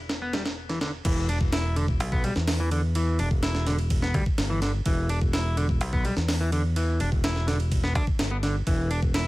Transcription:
0.00 1.02 E1 medium
0.09 snare medium
0.09 ride medium
0.22 0.32 B3 loud
0.33 0.42 G3 medium
0.33 snare loud
0.33 ride medium
0.45 snare loud
0.45 ride medium
0.69 0.80 E3 medium
0.69 snare soft
0.69 ride medium
0.81 0.90 D3 medium
0.81 snare loud
0.81 ride medium
1.05 2.00 E1 loud
1.05 1.28 E3 medium
1.05 kick loud
1.05 crash medium
1.05 ride medium
1.29 1.38 D4 medium
1.29 ride medium
1.41 kick medium
1.52 1.75 E4 medium
1.52 snare loud
1.52 ride medium
1.76 1.85 D3 loud
1.76 ride medium
1.88 kick medium
2.00 2.30 B1 medium
2.00 ride medium
2.12 2.23 B3 loud
2.12 kick loud
2.24 2.33 G3 medium
2.24 ride medium
2.36 3.21 E2 medium
2.36 snare medium
2.48 snare loud
2.48 open hi-hat medium
2.60 2.71 E3 loud
2.71 2.80 D3 loud
2.71 ride medium
2.95 3.18 E3 medium
2.95 ride medium
3.19 4.14 E1 medium
3.19 3.28 D4 medium
3.19 ride medium
3.31 kick loud
3.43 3.66 E4 medium
3.43 snare loud
3.43 ride medium
3.55 snare soft
3.67 3.75 D3 loud
3.67 snare medium
3.67 ride medium
3.79 ride soft
3.90 kick loud
3.90 ride medium
4.02 4.13 B3 loud
4.02 snare medium
4.14 4.26 D2 loud
4.14 4.23 G3 medium
4.14 kick medium
4.14 ride medium
4.26 muted fingered electric bass stroke soft
4.26 kick loud
4.38 4.80 G1 loud
4.38 snare loud
4.38 ride medium
4.50 4.61 E3 loud
4.62 4.71 D3 loud
4.62 snare medium
4.62 ride medium
4.86 5.81 E1 loud
4.86 5.09 E3 medium
4.86 kick loud
4.86 ride medium
5.09 5.18 D4 medium
5.09 ride medium
5.21 kick loud
5.33 5.56 E4 medium
5.33 snare loud
5.33 ride medium
5.57 5.66 D3 loud
5.57 ride medium
5.69 kick loud
5.81 6.11 B1 medium
5.81 ride medium
5.93 6.04 B3 loud
5.93 kick loud
6.05 6.14 G3 medium
6.05 ride medium
6.17 7.02 E2 medium
6.17 snare medium
6.28 snare loud
6.28 open hi-hat medium
6.41 6.51 E3 loud
6.52 6.61 D3 loud
6.52 ride medium
6.76 6.99 E3 medium
6.76 ride medium
7.00 7.95 E1 medium
7.00 7.09 D4 medium
7.00 ride medium
7.12 kick medium
7.24 7.47 E4 medium
7.24 snare loud
7.24 ride medium
7.36 snare soft
7.48 7.57 D3 loud
7.48 snare medium
7.48 ride medium
7.60 ride soft
7.72 kick loud
7.72 ride medium
7.84 7.94 B3 loud
7.84 snare medium
7.95 8.07 D2 loud
7.95 8.04 D4 loud
7.95 kick medium
7.95 ride medium
8.07 muted fingered electric bass stroke soft
8.07 kick loud
8.19 8.61 G1 loud
8.19 snare loud
8.19 ride medium
8.31 8.36 B3 medium
8.43 8.54 D3 loud
8.43 snare medium
8.43 ride medium
8.67 9.28 E1 loud
8.67 8.90 E3 medium
8.67 kick loud
8.67 ride medium
8.91 8.99 D4 medium
8.91 ride medium
9.03 kick medium
9.14 9.28 E4 medium
9.14 snare loud
9.14 ride medium

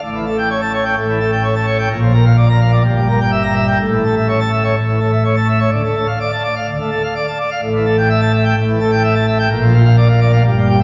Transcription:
0.02 0.95 A1 medium
0.02 0.95 A2 medium
0.15 0.25 E3 medium
0.27 0.37 A4 medium
0.38 0.49 G5 medium
0.50 0.60 C#5 medium
0.62 0.72 A5 loud
0.74 0.84 C#5 medium
0.85 0.95 G5 medium
0.97 1.88 A1 medium
0.97 1.88 A2 medium
1.09 1.19 E3 medium
1.20 1.31 A4 medium
1.32 1.43 G5 medium
1.44 1.54 C#5 medium
1.55 1.66 A5 medium
1.67 1.77 C#5 medium
1.78 1.89 G5 medium
1.90 2.82 A#1 loud
1.90 2.82 A#2 loud
2.02 2.13 F3 medium
2.13 2.24 A#4 medium
2.25 2.36 F5 medium
2.37 2.48 D5 medium
2.49 2.60 A#5 loud
2.61 2.72 F5 medium
2.72 2.83 D5 medium
2.84 3.77 G1 loud
2.84 3.77 G2 loud
2.96 3.07 G3 medium
3.08 3.19 A#4 medium
3.20 3.31 G5 medium
3.32 3.43 E5 medium
3.43 3.54 A#5 loud
3.55 3.66 E5 medium
3.67 3.78 G5 medium
3.80 4.74 A1 medium
3.80 4.74 A2 medium
3.92 4.03 E3 medium
4.04 4.15 A4 medium
4.16 4.27 E5 medium
4.29 4.40 C#5 medium
4.40 4.51 A5 medium
4.52 4.63 E5 medium
4.64 4.75 C#5 medium
4.76 5.70 A1 medium
4.76 5.70 A2 medium
4.88 4.99 E3 medium
5.00 5.11 A4 medium
5.12 5.23 E5 medium
5.24 5.35 C#5 medium
5.36 5.47 A5 medium
5.48 5.59 E5 medium
5.59 5.70 C#5 medium
5.71 5.82 D2 medium
5.71 5.82 D3 medium
5.83 5.95 A3 medium
5.95 6.07 A4 medium
6.07 6.19 F5 medium
6.20 6.31 D5 medium
6.32 6.43 A5 medium
6.44 6.55 D5 medium
6.56 6.67 F5 medium
6.68 6.78 D2 medium
6.68 6.78 D3 medium
6.79 6.90 A3 medium
6.91 7.02 A4 medium
7.03 7.14 F5 medium
7.16 7.26 D5 medium
7.27 7.38 A5 medium
7.39 7.50 D5 medium
7.51 7.61 F5 medium
7.62 8.54 A1 medium
7.62 8.54 A2 loud
7.75 7.85 E3 medium
7.86 7.97 A4 medium
7.98 8.09 G5 medium
8.10 8.20 E5 medium
8.21 8.32 A5 loud
8.33 8.44 E5 medium
8.45 8.56 G5 medium
8.56 9.48 A1 loud
8.56 9.48 A2 loud
8.68 8.79 E3 medium
8.80 8.91 A4 medium
8.91 9.02 G5 medium
9.03 9.14 E5 medium
9.15 9.26 A5 loud
9.27 9.38 E5 loud
9.39 9.49 G5 medium
9.50 10.41 A#1 loud
9.50 10.42 A#2 loud
9.62 9.73 F3 medium
9.74 9.84 F4 loud
9.85 9.96 F5 loud
9.97 10.08 D5 loud
10.09 10.20 F5 medium
10.21 10.32 D5 loud
10.33 10.43 F5 medium
10.45 10.83 G1 loud
10.45 10.83 G2 loud
10.58 10.68 G3 medium
10.69 10.79 G4 medium

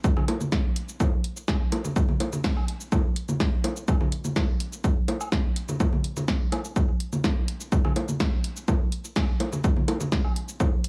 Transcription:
0.04 kick loud
0.04 cabasa soft
0.17 low conga medium
0.17 high woodblock medium
0.28 closed hi-hat medium
0.28 low bongo medium
0.41 low conga medium
0.41 cabasa soft
0.52 kick loud
0.52 snare medium
0.52 cabasa soft
0.76 closed hi-hat medium
0.89 cabasa soft
1.00 kick loud
1.00 low bongo medium
1.00 cabasa soft
1.24 closed hi-hat medium
1.37 cabasa soft
1.48 kick loud
1.48 snare medium
1.48 cabasa soft
1.48 high woodblock medium
1.72 closed hi-hat medium
1.72 low bongo medium
1.85 low conga medium
1.85 cabasa soft
1.96 kick loud
1.96 cabasa soft
2.09 low conga medium
2.20 closed hi-hat medium
2.20 low bongo medium
2.33 low conga medium
2.33 cabasa soft
2.44 kick loud
2.44 snare medium
2.44 cabasa soft
2.57 high woodblock medium
2.68 closed hi-hat medium
2.81 cabasa soft
2.92 kick loud
2.92 low bongo medium
2.92 cabasa soft
3.16 closed hi-hat medium
3.29 low conga medium
3.29 cabasa soft
3.40 kick loud
3.40 snare medium
3.40 cabasa soft
3.64 closed hi-hat medium
3.64 low bongo medium
3.77 cabasa medium
3.88 kick loud
3.88 cabasa soft
3.88 high woodblock medium
4.01 low conga medium
4.12 closed hi-hat medium
4.25 low conga medium
4.25 cabasa soft
4.36 kick loud
4.36 snare medium
4.36 low bongo medium
4.36 cabasa soft
4.60 closed hi-hat medium
4.73 cabasa soft
4.84 kick loud
4.84 cabasa soft
5.08 closed hi-hat medium
5.08 low bongo medium
5.21 cabasa soft
5.21 high woodblock medium
5.32 kick loud
5.32 snare medium
5.32 cabasa soft
5.56 closed hi-hat medium
5.69 low conga medium
5.69 cabasa medium
5.80 kick loud
5.80 low bongo medium
5.80 cabasa soft
5.93 low conga medium
6.04 closed hi-hat medium
6.17 low conga medium
6.17 cabasa medium
6.28 kick loud
6.28 snare medium
6.28 cabasa soft
6.52 closed hi-hat medium
6.52 low bongo medium
6.52 high woodblock medium
6.65 cabasa medium
6.76 kick loud
6.76 cabasa soft
7.00 closed hi-hat medium
7.13 low conga medium
7.13 cabasa medium
7.24 kick loud
7.24 snare medium
7.24 low bongo medium
7.24 cabasa soft
7.48 closed hi-hat medium
7.61 cabasa medium
7.72 kick loud
7.72 cabasa soft
7.85 low conga medium
7.85 high woodblock medium
7.96 closed hi-hat medium
7.96 low bongo medium
8.09 low conga medium
8.09 cabasa medium
8.20 kick loud
8.20 snare medium
8.20 cabasa soft
8.44 closed hi-hat medium
8.57 cabasa soft
8.68 kick loud
8.68 low bongo medium
8.68 cabasa soft
8.92 closed hi-hat medium
9.05 cabasa medium
9.16 kick loud
9.16 snare medium
9.16 cabasa soft
9.16 high woodblock medium
9.40 closed hi-hat medium
9.40 low bongo medium
9.53 low conga medium
9.53 cabasa medium
9.64 kick loud
9.64 cabasa soft
9.77 low conga medium
9.88 closed hi-hat medium
9.88 high bongo medium
9.88 low bongo medium
10.00 low conga medium
10.00 cabasa medium
10.12 kick loud
10.12 snare medium
10.12 cabasa soft
10.24 high woodblock medium
10.36 closed hi-hat medium
10.49 cabasa medium
10.60 kick loud
10.60 low bongo medium
10.60 cabasa soft
10.84 closed hi-hat medium

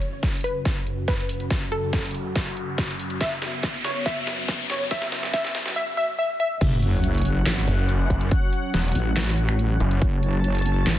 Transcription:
0.00 5.72 F#2 medium
0.00 5.72 C#3 medium
0.00 3.17 C#4 medium
0.00 5.72 F#4 medium
0.00 0.36 C#5 medium
0.00 closed hi-hat medium
0.00 riser medium
0.23 kick medium
0.23 snare soft
0.23 closed hi-hat medium
0.34 closed hi-hat medium
0.37 closed hi-hat medium
0.41 1.00 B4 medium
0.41 closed hi-hat medium
0.41 open hi-hat medium
0.65 kick loud
0.65 snare soft
0.65 closed hi-hat medium
0.87 closed hi-hat medium
1.08 1.63 B4 medium
1.08 kick medium
1.08 snare medium
1.08 closed hi-hat medium
1.29 open hi-hat medium
1.40 closed hi-hat soft
1.50 kick loud
1.50 snare medium
1.50 closed hi-hat medium
1.72 3.12 A4 medium
1.72 closed hi-hat medium
1.93 kick loud
1.93 snare medium
1.93 closed hi-hat medium
2.04 closed hi-hat soft
2.07 closed hi-hat medium
2.11 closed hi-hat medium
2.11 open hi-hat medium
2.36 kick medium
2.36 snare medium
2.36 closed hi-hat medium
2.57 closed hi-hat medium
2.78 kick medium
2.78 snare medium
2.78 closed hi-hat medium
2.99 open hi-hat medium
3.10 closed hi-hat soft
3.21 5.74 B3 medium
3.21 3.76 E5 medium
3.21 kick loud
3.21 snare medium
3.21 closed hi-hat medium
3.42 snare medium
3.42 closed hi-hat soft
3.63 kick loud
3.63 snare medium
3.63 closed hi-hat medium
3.74 closed hi-hat medium
3.77 closed hi-hat medium
3.81 4.04 C#5 medium
3.81 snare medium
3.81 closed hi-hat medium
3.81 open hi-hat medium
4.06 4.61 E5 medium
4.06 kick loud
4.06 snare medium
4.06 closed hi-hat medium
4.27 snare medium
4.27 closed hi-hat medium
4.48 kick medium
4.48 snare medium
4.48 closed hi-hat medium
4.70 4.89 C#5 medium
4.70 snare medium
4.70 open hi-hat medium
4.81 closed hi-hat soft
4.91 5.32 E5 loud
4.91 kick medium
4.91 snare medium
4.91 closed hi-hat medium
5.02 snare medium
5.12 snare medium
5.12 closed hi-hat soft
5.23 snare medium
5.34 5.74 E5 loud
5.34 kick loud
5.34 snare loud
5.34 closed hi-hat medium
5.44 snare medium
5.44 closed hi-hat soft
5.48 closed hi-hat medium
5.51 snare loud
5.51 closed hi-hat medium
5.51 open hi-hat medium
5.66 snare medium
5.76 5.96 E5 loud
5.97 6.17 E5 loud
6.19 6.38 E5 loud
6.40 6.60 E5 loud
6.61 7.45 F#1 loud
6.61 10.99 F#3 medium
6.61 10.99 C#4 medium
6.61 10.99 C#5 medium
6.61 10.00 F#5 medium
6.61 kick loud
6.61 closed hi-hat medium
6.61 crash loud
6.61 sub drop medium
6.82 closed hi-hat medium
7.04 closed hi-hat medium
7.15 closed hi-hat medium
7.18 closed hi-hat medium
7.22 closed hi-hat medium
7.22 open hi-hat medium
7.46 7.66 G#1 medium
7.46 snare loud
7.46 clap medium
7.46 closed hi-hat medium
7.68 8.30 F#1 loud
7.68 closed hi-hat medium
7.89 closed hi-hat medium
8.10 kick medium
8.10 closed hi-hat medium
8.21 closed hi-hat soft
8.31 kick loud
8.31 closed hi-hat medium
8.53 closed hi-hat medium
8.74 8.94 E1 loud
8.74 snare soft
8.74 closed hi-hat medium
8.85 closed hi-hat medium
8.88 closed hi-hat medium
8.92 9.79 A1 loud
8.92 closed hi-hat medium
8.92 open hi-hat medium
9.17 snare loud
9.17 clap medium
9.17 closed hi-hat medium
9.38 closed hi-hat medium
9.49 finger snap medium
9.59 closed hi-hat medium
9.80 10.00 F#1 medium
9.80 closed hi-hat medium
9.91 closed hi-hat soft
10.02 10.85 F#1 loud
10.02 10.99 A5 medium
10.02 kick loud
10.02 closed hi-hat medium
10.23 closed hi-hat soft
10.44 closed hi-hat medium
10.55 closed hi-hat medium
10.58 closed hi-hat medium
10.62 closed hi-hat medium
10.62 open hi-hat medium
10.87 10.99 G#1 medium
10.87 snare loud
10.87 clap medium
10.87 closed hi-hat medium

